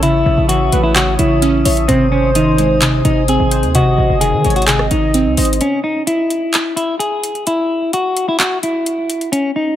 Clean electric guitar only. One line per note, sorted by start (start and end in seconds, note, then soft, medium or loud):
0.03 0.46 E4 loud
0.49 0.82 F#4 medium
0.83 0.93 E4 medium
0.96 1.13 F#4 medium
1.19 1.85 E4 medium
1.88 2.06 C4 loud
2.12 2.30 C#4 medium
2.36 3.01 D#4 medium
3.05 3.23 D#4 medium
3.29 3.72 G#4 medium
3.75 4.19 F#4 medium
4.21 4.54 G#4 medium
4.56 4.65 F#4 medium
4.67 4.85 G#4 medium
4.91 5.57 D#4 medium
5.61 5.79 C#4 loud
5.84 6.02 D#4 medium
6.07 6.73 E4 medium
6.76 6.94 E4 medium
6.99 7.44 G#4 medium
7.47 7.91 E4 medium
7.94 8.26 F#4 medium
8.29 8.37 E4 medium
8.39 8.57 F#4 medium
8.63 9.29 E4 medium
9.32 9.50 C#4 loud
9.56 9.74 D#4 medium